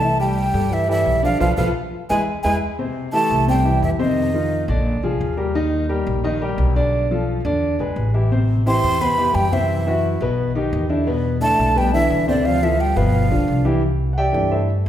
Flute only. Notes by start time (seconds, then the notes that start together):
Already playing: A5
0.20 G5
0.73 E5
0.91 E5
1.25 F5
1.41 F5
1.57 F5
2.09 G#5
2.43 G#5
3.13 A5
3.49 G5
3.84 E5
4.01 D#5
8.68 C6
9.01 B5
9.35 G5
9.53 E5
11.42 A5
11.78 G5
11.94 E5
12.29 D5
12.45 F5
12.63 E5
12.81 G5
12.97 F5